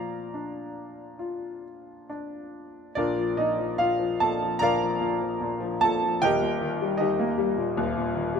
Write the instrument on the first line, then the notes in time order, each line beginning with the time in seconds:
grand piano
Already playing: A#2 F3 D5 F5 A#5
0.34 D4
1.19 F4
2.10 D4
2.95 A#1 A#2 D4 F4 A#4 D5
3.17 F3
3.37 A#2 D#4 D#5
3.57 F3
3.78 A#2 F4 F5
3.99 F3
4.20 A#2 A4 A5
4.42 F3
4.59 A#1 A#2 A#4 D5 F5 A#5
4.81 F3
5.01 A#2
5.21 F3
5.41 A#2
5.60 F3
5.81 A#2 A4 A5
6.02 F3
6.22 D#1 D#2 G4 A#4 D#5 G5
6.42 A#2
6.61 D#3
6.81 G3
6.97 D#3 D#4 G4 D#5
7.19 A#3
7.38 G3
7.57 A#2
7.77 D#1 D#2
7.97 A#2
8.15 D#3
8.35 G3